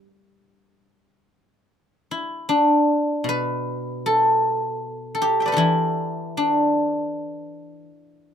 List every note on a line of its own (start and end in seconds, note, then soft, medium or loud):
0.01 0.34 F4 medium
0.34 1.63 E4 medium
2.11 4.72 E4 medium
2.49 5.29 D4 medium
3.24 5.58 B2 soft
3.29 5.33 B4 medium
4.06 5.14 A4 medium
5.15 5.52 A4 medium
5.22 5.53 G4 medium
5.40 7.14 E5 soft
5.40 6.96 G5 soft
5.46 7.52 B4 soft
5.46 7.30 D5 soft
5.52 7.89 G4 medium
5.52 7.71 A4 soft
5.57 7.86 E3 medium
5.57 8.19 E4 medium
6.37 8.34 D4 medium